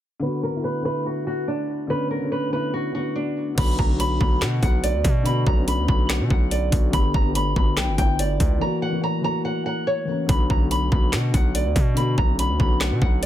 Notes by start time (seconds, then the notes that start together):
0.20 D3 B3 B4
0.25 F#4
0.43 A#4
0.51 D3 B3
0.56 E4
0.64 B4
0.82 D3 B3 B4
0.87 E4
1.06 F#4
1.27 F#4
1.48 D4
1.87 D3 B3 B4
1.93 C#4
2.11 A#4
2.19 D3 B3
2.25 C#4
2.32 B4
2.50 D3 B3 B4
2.55 E4
2.74 F#4
2.92 D3 B3 F#4
2.98 F#4
3.16 D4
3.55 B1 D3 B3 B5, kick, closed hi-hat, crash
3.61 F#4
3.78 B1 A#5, kick
3.86 D3 B3
3.92 F#4
4.00 B5, closed hi-hat
4.18 B1 D3 B3 B5, kick
4.24 F#4
4.41 B2 F#5, snare, clap, closed hi-hat
4.60 B1 D3 B3 F#5, kick, closed hi-hat
4.66 F#4
4.83 D5, closed hi-hat
4.94 D2
5.04 B2, kick, closed hi-hat
5.23 D3 B3 B5, closed hi-hat
5.29 F#4
5.47 B1 A#5, kick
5.54 D3 B3
5.60 C#4
5.68 B5, closed hi-hat
5.78 D2
5.86 B1 D3 B3 B5, kick
5.92 F#4
6.10 F#5, snare, clap, closed hi-hat
6.20 B2
6.30 B1 F#5, kick
6.51 D5, closed hi-hat
6.70 B1 D3 B3, kick, closed hi-hat
6.75 F#4
6.91 G1 D3 B3 B5, kick, closed hi-hat
6.96 G4
7.14 G1 A#5, kick
7.22 D3 B3
7.28 G4
7.35 B5, closed hi-hat
7.53 G1 D3 B3 B5, kick
7.59 F#4
7.77 B1 G5, snare, clap, closed hi-hat
7.88 G1
7.96 G1 D3 B3 G5, kick, closed hi-hat
8.02 E4
8.19 D5, closed hi-hat
8.40 C#2, kick, closed hi-hat
8.59 E3 A#3 A#5
8.64 F#4
8.82 F#5
8.90 E3 A#3
8.96 F#4
9.04 A#5
9.21 E3 A#3 A#5
9.27 F#4
9.45 F#5
9.66 F#5
9.87 C#5
10.05 E3 A#3
10.11 C#4
10.27 B1 D3 B3 B5, kick, closed hi-hat
10.32 F#4
10.50 B1 A#5, kick
10.58 D3 B3
10.63 F#4
10.71 B5, closed hi-hat
10.89 B1 D3 B3 B5, kick
10.95 F#4
11.13 B2 F#5, snare, clap, closed hi-hat
11.31 B1 D3 B3 F#5, kick, closed hi-hat
11.37 F#4
11.55 D5, closed hi-hat
11.65 D2
11.76 B2, kick, closed hi-hat
11.94 D3 B3 B5, closed hi-hat
12.00 F#4
12.18 B1 A#5, kick
12.25 D3 B3
12.31 C#4
12.39 B5, closed hi-hat
12.49 D2
12.57 B1 D3 B3 B5, kick
12.63 F#4
12.81 F#5, snare, clap, closed hi-hat
12.91 B2
13.02 B1 F#5, kick
13.22 D5, closed hi-hat